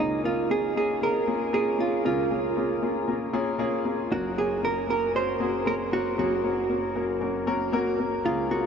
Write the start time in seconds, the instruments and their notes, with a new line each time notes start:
Already playing: grand piano C#2 C#3 A#3 C#4
0.00 hollow-body jazz guitar D#4, grand piano F4 G#4
0.24 grand piano A#3 C#4 F4 A#4, hollow-body jazz guitar F4
0.50 grand piano A#3 C#4 F4 G#4, hollow-body jazz guitar G#4
0.76 grand piano A#3 C#4 F4 A#4, hollow-body jazz guitar G#4
1.01 grand piano A#3 C#4 F4 G#4, hollow-body jazz guitar A#4
1.27 grand piano A#3 C#4 F4 G#4
1.53 grand piano A#3 C#4 F4 A#4, hollow-body jazz guitar G#4
1.78 grand piano A#3 C#4 F4 G#4, hollow-body jazz guitar F4
2.05 grand piano C#2 C#3 A#3 C#4 F4 A#4, hollow-body jazz guitar F4
2.30 grand piano A#3 C#4 F4 G#4
2.56 grand piano A#3 C#4 F4 G#4
2.82 grand piano A#3 C#4 F4 G#4
3.08 grand piano A#3 C#4 F4 A#4
3.33 grand piano A#3 C#4 F4 G#4
3.59 grand piano A#3 C#4 F4 G#4
3.85 grand piano A#3 C#4 F4 G#4
4.11 grand piano F#1 F#2 A#3 C#4 F#4 A#4, hollow-body jazz guitar F#4
4.37 grand piano A#3 C#4 F#4 A#4, hollow-body jazz guitar G#4
4.63 grand piano A#3 C#4 F#4 A#4, hollow-body jazz guitar A#4
4.88 grand piano A#3 C#4 F#4 A#4, hollow-body jazz guitar A#4
5.14 grand piano A#3 C#4 F#4 C#5, hollow-body jazz guitar C5
5.40 grand piano A#3 C#4 F#4 G#4
5.66 grand piano A#3 C#4 F#4 A#4, hollow-body jazz guitar A#4
5.91 grand piano A#3 C#4 F#4 C#5, hollow-body jazz guitar F#4
6.18 grand piano F#1 F#2 A#3 C#4 F#4 G#4, hollow-body jazz guitar F#4
6.44 grand piano A#3 C#4 F#4 C#5
6.69 grand piano A#3 C#4 F#4 A#4
6.95 grand piano A#3 C#4 F#4 A#4
7.21 grand piano A#3 C#4 F#4 A#4
7.47 grand piano A#3 C#4 F#4 A#4
7.72 grand piano A#3 C#4 F#4 A#4
7.99 grand piano A#3 C#4 F#4 A#4
8.24 grand piano C#2 C#3 A#3 C#4 F4 G#4, hollow-body jazz guitar F4
8.50 grand piano A#3 C#4 F4 G#4, hollow-body jazz guitar F#4